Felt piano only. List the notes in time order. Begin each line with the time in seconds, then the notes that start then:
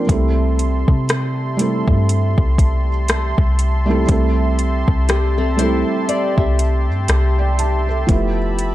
Already playing: F3 A#3 C4 D4 A#4
0.07 G3 A3 C4 E4
0.12 A4
1.57 G3 A3 C4 E4
1.62 A4
3.86 G3 A3 C4 E4
3.91 A4
4.07 G3 A3 C4 E4
4.11 A4
5.57 G3 A3 C4 E4
5.62 A4
7.38 D5 G5
7.59 E5 A5
7.89 A4 E5
8.07 F3 A3 B3 E4
8.11 G4